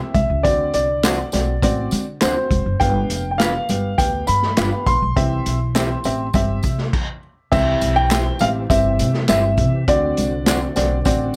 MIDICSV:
0, 0, Header, 1, 7, 480
1, 0, Start_track
1, 0, Key_signature, 0, "major"
1, 0, Tempo, 589391
1, 362, Time_signature, 4, 2, 24, 8
1, 9252, End_track
2, 0, Start_track
2, 0, Title_t, "Grand piano"
2, 0, Program_c, 0, 0
2, 0, Note_on_c, 0, 76, 84
2, 88, Note_off_c, 0, 76, 0
2, 118, Note_on_c, 0, 76, 77
2, 353, Note_on_c, 0, 74, 84
2, 368, Note_off_c, 0, 76, 0
2, 581, Note_off_c, 0, 74, 0
2, 603, Note_on_c, 0, 74, 78
2, 1532, Note_off_c, 0, 74, 0
2, 1799, Note_on_c, 0, 72, 78
2, 2278, Note_on_c, 0, 79, 90
2, 2297, Note_off_c, 0, 72, 0
2, 2685, Note_off_c, 0, 79, 0
2, 2697, Note_on_c, 0, 79, 60
2, 2754, Note_on_c, 0, 77, 89
2, 2760, Note_off_c, 0, 79, 0
2, 3241, Note_on_c, 0, 79, 87
2, 3255, Note_off_c, 0, 77, 0
2, 3479, Note_on_c, 0, 83, 99
2, 3491, Note_off_c, 0, 79, 0
2, 3962, Note_on_c, 0, 84, 103
2, 3977, Note_off_c, 0, 83, 0
2, 5851, Note_off_c, 0, 84, 0
2, 6121, Note_on_c, 0, 76, 98
2, 6482, Note_on_c, 0, 79, 105
2, 6494, Note_off_c, 0, 76, 0
2, 6846, Note_on_c, 0, 77, 90
2, 6854, Note_off_c, 0, 79, 0
2, 6900, Note_off_c, 0, 77, 0
2, 7084, Note_on_c, 0, 76, 85
2, 7557, Note_off_c, 0, 76, 0
2, 7569, Note_on_c, 0, 76, 92
2, 8053, Note_on_c, 0, 74, 79
2, 8060, Note_off_c, 0, 76, 0
2, 9252, Note_off_c, 0, 74, 0
2, 9252, End_track
3, 0, Start_track
3, 0, Title_t, "Upright piano"
3, 0, Program_c, 1, 0
3, 0, Note_on_c, 1, 60, 62
3, 0, Note_on_c, 1, 67, 61
3, 0, Note_on_c, 1, 76, 74
3, 218, Note_off_c, 1, 60, 0
3, 219, Note_off_c, 1, 67, 0
3, 220, Note_off_c, 1, 76, 0
3, 360, Note_on_c, 1, 60, 80
3, 362, Note_on_c, 1, 66, 75
3, 364, Note_on_c, 1, 50, 57
3, 364, Note_on_c, 1, 74, 89
3, 696, Note_off_c, 1, 60, 0
3, 697, Note_off_c, 1, 66, 0
3, 698, Note_off_c, 1, 74, 0
3, 842, Note_on_c, 1, 66, 58
3, 844, Note_on_c, 1, 60, 65
3, 844, Note_on_c, 1, 74, 75
3, 1010, Note_off_c, 1, 66, 0
3, 1011, Note_off_c, 1, 60, 0
3, 1011, Note_off_c, 1, 74, 0
3, 1052, Note_off_c, 1, 50, 0
3, 1082, Note_on_c, 1, 60, 61
3, 1084, Note_on_c, 1, 66, 59
3, 1085, Note_on_c, 1, 74, 68
3, 1250, Note_off_c, 1, 60, 0
3, 1251, Note_off_c, 1, 66, 0
3, 1252, Note_off_c, 1, 74, 0
3, 1327, Note_on_c, 1, 60, 83
3, 1329, Note_on_c, 1, 66, 75
3, 1331, Note_on_c, 1, 74, 94
3, 1660, Note_off_c, 1, 60, 0
3, 1661, Note_off_c, 1, 66, 0
3, 1662, Note_off_c, 1, 74, 0
3, 1802, Note_on_c, 1, 60, 70
3, 1806, Note_on_c, 1, 66, 63
3, 1810, Note_on_c, 1, 72, 68
3, 2138, Note_off_c, 1, 60, 0
3, 2139, Note_off_c, 1, 66, 0
3, 2142, Note_off_c, 1, 72, 0
3, 2282, Note_on_c, 1, 43, 54
3, 2283, Note_on_c, 1, 59, 86
3, 2283, Note_on_c, 1, 67, 71
3, 2286, Note_on_c, 1, 77, 90
3, 2618, Note_off_c, 1, 59, 0
3, 2618, Note_off_c, 1, 67, 0
3, 2620, Note_off_c, 1, 77, 0
3, 2762, Note_on_c, 1, 59, 64
3, 2762, Note_on_c, 1, 67, 62
3, 2767, Note_on_c, 1, 77, 74
3, 2931, Note_off_c, 1, 59, 0
3, 2931, Note_off_c, 1, 67, 0
3, 2933, Note_off_c, 1, 77, 0
3, 2972, Note_off_c, 1, 43, 0
3, 3009, Note_on_c, 1, 59, 63
3, 3010, Note_on_c, 1, 67, 57
3, 3012, Note_on_c, 1, 77, 63
3, 3174, Note_off_c, 1, 59, 0
3, 3175, Note_off_c, 1, 67, 0
3, 3176, Note_off_c, 1, 77, 0
3, 3238, Note_on_c, 1, 59, 68
3, 3240, Note_on_c, 1, 67, 67
3, 3246, Note_on_c, 1, 77, 78
3, 3576, Note_off_c, 1, 59, 0
3, 3577, Note_off_c, 1, 67, 0
3, 3580, Note_off_c, 1, 77, 0
3, 3728, Note_on_c, 1, 59, 70
3, 3731, Note_on_c, 1, 67, 60
3, 3731, Note_on_c, 1, 77, 80
3, 4061, Note_off_c, 1, 59, 0
3, 4062, Note_off_c, 1, 67, 0
3, 4063, Note_off_c, 1, 77, 0
3, 4204, Note_on_c, 1, 60, 78
3, 4204, Note_on_c, 1, 67, 75
3, 4207, Note_on_c, 1, 52, 57
3, 4208, Note_on_c, 1, 76, 99
3, 4539, Note_off_c, 1, 60, 0
3, 4539, Note_off_c, 1, 67, 0
3, 4541, Note_off_c, 1, 76, 0
3, 4683, Note_on_c, 1, 60, 84
3, 4688, Note_on_c, 1, 67, 75
3, 4688, Note_on_c, 1, 76, 89
3, 4852, Note_off_c, 1, 60, 0
3, 4854, Note_off_c, 1, 67, 0
3, 4854, Note_off_c, 1, 76, 0
3, 4894, Note_off_c, 1, 52, 0
3, 4929, Note_on_c, 1, 60, 78
3, 4930, Note_on_c, 1, 67, 61
3, 4932, Note_on_c, 1, 76, 75
3, 5095, Note_off_c, 1, 60, 0
3, 5095, Note_off_c, 1, 67, 0
3, 5096, Note_off_c, 1, 76, 0
3, 5166, Note_on_c, 1, 67, 71
3, 5167, Note_on_c, 1, 60, 75
3, 5173, Note_on_c, 1, 76, 89
3, 5500, Note_off_c, 1, 67, 0
3, 5501, Note_off_c, 1, 60, 0
3, 5503, Note_off_c, 1, 76, 0
3, 6123, Note_on_c, 1, 60, 87
3, 6125, Note_on_c, 1, 67, 74
3, 6127, Note_on_c, 1, 52, 56
3, 6127, Note_on_c, 1, 76, 92
3, 6458, Note_off_c, 1, 60, 0
3, 6459, Note_off_c, 1, 67, 0
3, 6460, Note_off_c, 1, 76, 0
3, 6604, Note_on_c, 1, 60, 68
3, 6607, Note_on_c, 1, 67, 60
3, 6609, Note_on_c, 1, 76, 73
3, 6771, Note_off_c, 1, 60, 0
3, 6773, Note_off_c, 1, 67, 0
3, 6774, Note_off_c, 1, 76, 0
3, 6813, Note_off_c, 1, 52, 0
3, 6850, Note_on_c, 1, 67, 59
3, 6852, Note_on_c, 1, 60, 63
3, 6853, Note_on_c, 1, 76, 70
3, 7014, Note_off_c, 1, 67, 0
3, 7015, Note_off_c, 1, 60, 0
3, 7016, Note_off_c, 1, 76, 0
3, 7089, Note_on_c, 1, 60, 77
3, 7089, Note_on_c, 1, 67, 69
3, 7091, Note_on_c, 1, 76, 77
3, 7420, Note_off_c, 1, 60, 0
3, 7420, Note_off_c, 1, 67, 0
3, 7421, Note_off_c, 1, 76, 0
3, 7569, Note_on_c, 1, 60, 67
3, 7570, Note_on_c, 1, 67, 64
3, 7572, Note_on_c, 1, 76, 75
3, 7900, Note_off_c, 1, 60, 0
3, 7901, Note_off_c, 1, 67, 0
3, 7902, Note_off_c, 1, 76, 0
3, 8046, Note_on_c, 1, 60, 88
3, 8046, Note_on_c, 1, 66, 78
3, 8047, Note_on_c, 1, 50, 57
3, 8049, Note_on_c, 1, 74, 94
3, 8378, Note_off_c, 1, 60, 0
3, 8379, Note_off_c, 1, 66, 0
3, 8380, Note_off_c, 1, 74, 0
3, 8526, Note_on_c, 1, 60, 68
3, 8528, Note_on_c, 1, 66, 67
3, 8533, Note_on_c, 1, 74, 79
3, 8691, Note_off_c, 1, 60, 0
3, 8692, Note_off_c, 1, 66, 0
3, 8695, Note_off_c, 1, 74, 0
3, 8733, Note_off_c, 1, 50, 0
3, 8764, Note_on_c, 1, 60, 77
3, 8766, Note_on_c, 1, 66, 72
3, 8768, Note_on_c, 1, 74, 87
3, 8930, Note_off_c, 1, 60, 0
3, 8932, Note_off_c, 1, 66, 0
3, 8932, Note_off_c, 1, 74, 0
3, 9003, Note_on_c, 1, 60, 92
3, 9004, Note_on_c, 1, 66, 79
3, 9008, Note_on_c, 1, 74, 92
3, 9252, Note_off_c, 1, 60, 0
3, 9252, Note_off_c, 1, 66, 0
3, 9252, Note_off_c, 1, 74, 0
3, 9252, End_track
4, 0, Start_track
4, 0, Title_t, "Clean electric guitar"
4, 0, Program_c, 2, 27
4, 843, Note_on_c, 2, 62, 74
4, 851, Note_on_c, 2, 66, 90
4, 854, Note_on_c, 2, 72, 95
4, 943, Note_off_c, 2, 62, 0
4, 947, Note_off_c, 2, 66, 0
4, 949, Note_off_c, 2, 72, 0
4, 1800, Note_on_c, 2, 62, 76
4, 1809, Note_on_c, 2, 66, 70
4, 1812, Note_on_c, 2, 72, 80
4, 1902, Note_off_c, 2, 62, 0
4, 1907, Note_off_c, 2, 66, 0
4, 1909, Note_off_c, 2, 72, 0
4, 2766, Note_on_c, 2, 62, 82
4, 2774, Note_on_c, 2, 65, 84
4, 2779, Note_on_c, 2, 71, 89
4, 2866, Note_off_c, 2, 62, 0
4, 2870, Note_off_c, 2, 65, 0
4, 2872, Note_off_c, 2, 71, 0
4, 3723, Note_on_c, 2, 62, 67
4, 3728, Note_on_c, 2, 65, 71
4, 3734, Note_on_c, 2, 71, 68
4, 3825, Note_off_c, 2, 62, 0
4, 3827, Note_off_c, 2, 65, 0
4, 3830, Note_off_c, 2, 71, 0
4, 4682, Note_on_c, 2, 64, 70
4, 4688, Note_on_c, 2, 67, 72
4, 4694, Note_on_c, 2, 72, 75
4, 4784, Note_off_c, 2, 64, 0
4, 4787, Note_off_c, 2, 67, 0
4, 4790, Note_off_c, 2, 72, 0
4, 6601, Note_on_c, 2, 64, 76
4, 6609, Note_on_c, 2, 67, 82
4, 6612, Note_on_c, 2, 72, 77
4, 6703, Note_off_c, 2, 64, 0
4, 6707, Note_off_c, 2, 67, 0
4, 6708, Note_off_c, 2, 72, 0
4, 7560, Note_on_c, 2, 64, 67
4, 7568, Note_on_c, 2, 67, 78
4, 7572, Note_on_c, 2, 72, 83
4, 7662, Note_off_c, 2, 64, 0
4, 7666, Note_off_c, 2, 67, 0
4, 7668, Note_off_c, 2, 72, 0
4, 8521, Note_on_c, 2, 62, 77
4, 8526, Note_on_c, 2, 66, 79
4, 8534, Note_on_c, 2, 72, 76
4, 8622, Note_off_c, 2, 62, 0
4, 8625, Note_off_c, 2, 66, 0
4, 8628, Note_off_c, 2, 72, 0
4, 9252, End_track
5, 0, Start_track
5, 0, Title_t, "Tonewheel organ"
5, 0, Program_c, 3, 16
5, 6121, Note_on_c, 3, 52, 56
5, 6121, Note_on_c, 3, 60, 53
5, 6121, Note_on_c, 3, 67, 66
5, 8022, Note_off_c, 3, 52, 0
5, 8022, Note_off_c, 3, 67, 0
5, 8051, Note_on_c, 3, 50, 59
5, 8054, Note_on_c, 3, 66, 73
5, 9252, Note_off_c, 3, 50, 0
5, 9252, Note_off_c, 3, 60, 0
5, 9252, Note_off_c, 3, 66, 0
5, 9252, End_track
6, 0, Start_track
6, 0, Title_t, "Upright bass"
6, 0, Program_c, 4, 32
6, 120, Note_on_c, 4, 36, 84
6, 216, Note_off_c, 4, 36, 0
6, 242, Note_on_c, 4, 37, 84
6, 338, Note_off_c, 4, 37, 0
6, 364, Note_on_c, 4, 38, 99
6, 555, Note_off_c, 4, 38, 0
6, 604, Note_on_c, 4, 36, 67
6, 986, Note_off_c, 4, 36, 0
6, 1089, Note_on_c, 4, 35, 73
6, 1278, Note_off_c, 4, 35, 0
6, 1325, Note_on_c, 4, 33, 95
6, 1516, Note_off_c, 4, 33, 0
6, 1564, Note_on_c, 4, 50, 89
6, 1755, Note_off_c, 4, 50, 0
6, 1810, Note_on_c, 4, 38, 84
6, 1904, Note_off_c, 4, 38, 0
6, 2042, Note_on_c, 4, 29, 84
6, 2139, Note_off_c, 4, 29, 0
6, 2165, Note_on_c, 4, 30, 85
6, 2261, Note_off_c, 4, 30, 0
6, 2288, Note_on_c, 4, 31, 98
6, 2478, Note_off_c, 4, 31, 0
6, 2523, Note_on_c, 4, 29, 77
6, 2906, Note_off_c, 4, 29, 0
6, 3007, Note_on_c, 4, 31, 78
6, 3198, Note_off_c, 4, 31, 0
6, 3248, Note_on_c, 4, 38, 92
6, 3438, Note_off_c, 4, 38, 0
6, 3490, Note_on_c, 4, 43, 88
6, 3680, Note_off_c, 4, 43, 0
6, 3732, Note_on_c, 4, 31, 92
6, 3825, Note_off_c, 4, 31, 0
6, 3963, Note_on_c, 4, 34, 86
6, 4060, Note_off_c, 4, 34, 0
6, 4090, Note_on_c, 4, 35, 88
6, 4184, Note_off_c, 4, 35, 0
6, 4208, Note_on_c, 4, 36, 85
6, 4398, Note_off_c, 4, 36, 0
6, 4448, Note_on_c, 4, 35, 78
6, 4829, Note_off_c, 4, 35, 0
6, 4928, Note_on_c, 4, 33, 75
6, 5118, Note_off_c, 4, 33, 0
6, 5164, Note_on_c, 4, 31, 90
6, 5356, Note_off_c, 4, 31, 0
6, 5409, Note_on_c, 4, 48, 86
6, 5598, Note_off_c, 4, 48, 0
6, 6128, Note_on_c, 4, 36, 104
6, 6318, Note_off_c, 4, 36, 0
6, 6368, Note_on_c, 4, 35, 77
6, 6748, Note_off_c, 4, 35, 0
6, 6848, Note_on_c, 4, 33, 83
6, 7038, Note_off_c, 4, 33, 0
6, 7085, Note_on_c, 4, 31, 84
6, 7327, Note_on_c, 4, 48, 91
6, 7339, Note_off_c, 4, 31, 0
6, 7517, Note_off_c, 4, 48, 0
6, 7568, Note_on_c, 4, 31, 100
6, 7802, Note_on_c, 4, 48, 99
6, 7814, Note_off_c, 4, 31, 0
6, 7993, Note_off_c, 4, 48, 0
6, 8047, Note_on_c, 4, 38, 102
6, 8237, Note_off_c, 4, 38, 0
6, 8290, Note_on_c, 4, 36, 69
6, 8669, Note_off_c, 4, 36, 0
6, 8773, Note_on_c, 4, 35, 86
6, 8960, Note_off_c, 4, 35, 0
6, 9004, Note_on_c, 4, 33, 88
6, 9194, Note_off_c, 4, 33, 0
6, 9252, End_track
7, 0, Start_track
7, 0, Title_t, "Drums"
7, 118, Note_on_c, 9, 36, 85
7, 120, Note_on_c, 9, 42, 61
7, 120, Note_on_c, 9, 54, 25
7, 200, Note_off_c, 9, 36, 0
7, 201, Note_off_c, 9, 42, 0
7, 201, Note_off_c, 9, 54, 0
7, 364, Note_on_c, 9, 36, 87
7, 365, Note_on_c, 9, 42, 80
7, 372, Note_on_c, 9, 54, 31
7, 445, Note_off_c, 9, 36, 0
7, 447, Note_off_c, 9, 42, 0
7, 453, Note_off_c, 9, 54, 0
7, 600, Note_on_c, 9, 42, 59
7, 607, Note_on_c, 9, 54, 50
7, 681, Note_off_c, 9, 42, 0
7, 689, Note_off_c, 9, 54, 0
7, 843, Note_on_c, 9, 42, 72
7, 844, Note_on_c, 9, 38, 84
7, 852, Note_on_c, 9, 39, 93
7, 852, Note_on_c, 9, 54, 84
7, 924, Note_off_c, 9, 42, 0
7, 926, Note_off_c, 9, 38, 0
7, 933, Note_off_c, 9, 39, 0
7, 933, Note_off_c, 9, 54, 0
7, 1076, Note_on_c, 9, 54, 53
7, 1088, Note_on_c, 9, 42, 71
7, 1090, Note_on_c, 9, 38, 31
7, 1157, Note_off_c, 9, 54, 0
7, 1169, Note_off_c, 9, 42, 0
7, 1172, Note_off_c, 9, 38, 0
7, 1323, Note_on_c, 9, 36, 91
7, 1327, Note_on_c, 9, 42, 91
7, 1328, Note_on_c, 9, 54, 49
7, 1405, Note_off_c, 9, 36, 0
7, 1409, Note_off_c, 9, 42, 0
7, 1409, Note_off_c, 9, 54, 0
7, 1556, Note_on_c, 9, 54, 57
7, 1565, Note_on_c, 9, 42, 60
7, 1638, Note_off_c, 9, 54, 0
7, 1646, Note_off_c, 9, 42, 0
7, 1799, Note_on_c, 9, 42, 75
7, 1804, Note_on_c, 9, 38, 106
7, 1807, Note_on_c, 9, 39, 82
7, 1807, Note_on_c, 9, 54, 81
7, 1880, Note_off_c, 9, 42, 0
7, 1885, Note_off_c, 9, 38, 0
7, 1888, Note_off_c, 9, 39, 0
7, 1888, Note_off_c, 9, 54, 0
7, 2041, Note_on_c, 9, 36, 82
7, 2045, Note_on_c, 9, 42, 65
7, 2045, Note_on_c, 9, 54, 27
7, 2123, Note_off_c, 9, 36, 0
7, 2126, Note_off_c, 9, 42, 0
7, 2126, Note_off_c, 9, 54, 0
7, 2286, Note_on_c, 9, 36, 81
7, 2287, Note_on_c, 9, 42, 86
7, 2292, Note_on_c, 9, 54, 31
7, 2368, Note_off_c, 9, 36, 0
7, 2368, Note_off_c, 9, 42, 0
7, 2374, Note_off_c, 9, 54, 0
7, 2524, Note_on_c, 9, 42, 64
7, 2531, Note_on_c, 9, 54, 52
7, 2605, Note_off_c, 9, 42, 0
7, 2613, Note_off_c, 9, 54, 0
7, 2766, Note_on_c, 9, 42, 69
7, 2768, Note_on_c, 9, 38, 97
7, 2775, Note_on_c, 9, 39, 89
7, 2775, Note_on_c, 9, 54, 87
7, 2848, Note_off_c, 9, 42, 0
7, 2850, Note_off_c, 9, 38, 0
7, 2857, Note_off_c, 9, 39, 0
7, 2857, Note_off_c, 9, 54, 0
7, 3003, Note_on_c, 9, 54, 56
7, 3011, Note_on_c, 9, 42, 74
7, 3084, Note_off_c, 9, 54, 0
7, 3092, Note_off_c, 9, 42, 0
7, 3244, Note_on_c, 9, 36, 96
7, 3247, Note_on_c, 9, 54, 49
7, 3252, Note_on_c, 9, 42, 89
7, 3326, Note_off_c, 9, 36, 0
7, 3328, Note_off_c, 9, 54, 0
7, 3334, Note_off_c, 9, 42, 0
7, 3479, Note_on_c, 9, 54, 56
7, 3488, Note_on_c, 9, 42, 63
7, 3560, Note_off_c, 9, 54, 0
7, 3569, Note_off_c, 9, 42, 0
7, 3605, Note_on_c, 9, 38, 32
7, 3687, Note_off_c, 9, 38, 0
7, 3720, Note_on_c, 9, 42, 74
7, 3726, Note_on_c, 9, 38, 101
7, 3731, Note_on_c, 9, 39, 86
7, 3731, Note_on_c, 9, 54, 75
7, 3802, Note_off_c, 9, 42, 0
7, 3807, Note_off_c, 9, 38, 0
7, 3812, Note_off_c, 9, 39, 0
7, 3812, Note_off_c, 9, 54, 0
7, 3961, Note_on_c, 9, 54, 28
7, 3962, Note_on_c, 9, 36, 93
7, 3965, Note_on_c, 9, 42, 65
7, 4042, Note_off_c, 9, 54, 0
7, 4043, Note_off_c, 9, 36, 0
7, 4047, Note_off_c, 9, 42, 0
7, 4207, Note_on_c, 9, 36, 95
7, 4209, Note_on_c, 9, 42, 83
7, 4289, Note_off_c, 9, 36, 0
7, 4291, Note_off_c, 9, 42, 0
7, 4447, Note_on_c, 9, 42, 63
7, 4449, Note_on_c, 9, 54, 51
7, 4528, Note_off_c, 9, 42, 0
7, 4530, Note_off_c, 9, 54, 0
7, 4689, Note_on_c, 9, 39, 85
7, 4689, Note_on_c, 9, 42, 70
7, 4689, Note_on_c, 9, 54, 86
7, 4690, Note_on_c, 9, 38, 85
7, 4770, Note_off_c, 9, 39, 0
7, 4770, Note_off_c, 9, 42, 0
7, 4770, Note_off_c, 9, 54, 0
7, 4772, Note_off_c, 9, 38, 0
7, 4918, Note_on_c, 9, 54, 56
7, 4929, Note_on_c, 9, 42, 71
7, 5000, Note_off_c, 9, 54, 0
7, 5011, Note_off_c, 9, 42, 0
7, 5159, Note_on_c, 9, 54, 50
7, 5164, Note_on_c, 9, 36, 90
7, 5171, Note_on_c, 9, 42, 82
7, 5241, Note_off_c, 9, 54, 0
7, 5245, Note_off_c, 9, 36, 0
7, 5253, Note_off_c, 9, 42, 0
7, 5397, Note_on_c, 9, 54, 53
7, 5405, Note_on_c, 9, 36, 75
7, 5405, Note_on_c, 9, 42, 62
7, 5478, Note_off_c, 9, 54, 0
7, 5487, Note_off_c, 9, 36, 0
7, 5487, Note_off_c, 9, 42, 0
7, 5524, Note_on_c, 9, 38, 32
7, 5606, Note_off_c, 9, 38, 0
7, 5646, Note_on_c, 9, 36, 86
7, 5646, Note_on_c, 9, 49, 77
7, 5727, Note_off_c, 9, 36, 0
7, 5727, Note_off_c, 9, 49, 0
7, 6126, Note_on_c, 9, 36, 94
7, 6128, Note_on_c, 9, 49, 84
7, 6128, Note_on_c, 9, 54, 31
7, 6208, Note_off_c, 9, 36, 0
7, 6209, Note_off_c, 9, 49, 0
7, 6210, Note_off_c, 9, 54, 0
7, 6363, Note_on_c, 9, 54, 54
7, 6364, Note_on_c, 9, 42, 61
7, 6445, Note_off_c, 9, 54, 0
7, 6446, Note_off_c, 9, 42, 0
7, 6606, Note_on_c, 9, 39, 88
7, 6606, Note_on_c, 9, 54, 96
7, 6607, Note_on_c, 9, 42, 72
7, 6609, Note_on_c, 9, 38, 99
7, 6687, Note_off_c, 9, 39, 0
7, 6687, Note_off_c, 9, 54, 0
7, 6688, Note_off_c, 9, 42, 0
7, 6690, Note_off_c, 9, 38, 0
7, 6835, Note_on_c, 9, 54, 59
7, 6847, Note_on_c, 9, 42, 72
7, 6916, Note_off_c, 9, 54, 0
7, 6929, Note_off_c, 9, 42, 0
7, 7084, Note_on_c, 9, 36, 96
7, 7088, Note_on_c, 9, 54, 53
7, 7090, Note_on_c, 9, 42, 94
7, 7165, Note_off_c, 9, 36, 0
7, 7169, Note_off_c, 9, 54, 0
7, 7172, Note_off_c, 9, 42, 0
7, 7323, Note_on_c, 9, 54, 59
7, 7325, Note_on_c, 9, 42, 64
7, 7404, Note_off_c, 9, 54, 0
7, 7407, Note_off_c, 9, 42, 0
7, 7443, Note_on_c, 9, 38, 31
7, 7525, Note_off_c, 9, 38, 0
7, 7558, Note_on_c, 9, 42, 82
7, 7564, Note_on_c, 9, 38, 101
7, 7567, Note_on_c, 9, 39, 79
7, 7567, Note_on_c, 9, 54, 85
7, 7640, Note_off_c, 9, 42, 0
7, 7645, Note_off_c, 9, 38, 0
7, 7648, Note_off_c, 9, 39, 0
7, 7648, Note_off_c, 9, 54, 0
7, 7797, Note_on_c, 9, 54, 28
7, 7800, Note_on_c, 9, 36, 85
7, 7802, Note_on_c, 9, 42, 69
7, 7878, Note_off_c, 9, 54, 0
7, 7882, Note_off_c, 9, 36, 0
7, 7883, Note_off_c, 9, 42, 0
7, 8045, Note_on_c, 9, 42, 90
7, 8046, Note_on_c, 9, 36, 90
7, 8054, Note_on_c, 9, 54, 35
7, 8127, Note_off_c, 9, 36, 0
7, 8127, Note_off_c, 9, 42, 0
7, 8136, Note_off_c, 9, 54, 0
7, 8285, Note_on_c, 9, 42, 65
7, 8292, Note_on_c, 9, 54, 50
7, 8366, Note_off_c, 9, 42, 0
7, 8374, Note_off_c, 9, 54, 0
7, 8521, Note_on_c, 9, 42, 75
7, 8523, Note_on_c, 9, 38, 91
7, 8531, Note_on_c, 9, 39, 95
7, 8531, Note_on_c, 9, 54, 91
7, 8603, Note_off_c, 9, 42, 0
7, 8604, Note_off_c, 9, 38, 0
7, 8612, Note_off_c, 9, 39, 0
7, 8612, Note_off_c, 9, 54, 0
7, 8762, Note_on_c, 9, 54, 58
7, 8768, Note_on_c, 9, 42, 75
7, 8771, Note_on_c, 9, 38, 31
7, 8843, Note_off_c, 9, 54, 0
7, 8850, Note_off_c, 9, 42, 0
7, 8852, Note_off_c, 9, 38, 0
7, 9000, Note_on_c, 9, 54, 53
7, 9004, Note_on_c, 9, 36, 86
7, 9011, Note_on_c, 9, 42, 87
7, 9082, Note_off_c, 9, 54, 0
7, 9085, Note_off_c, 9, 36, 0
7, 9092, Note_off_c, 9, 42, 0
7, 9252, End_track
0, 0, End_of_file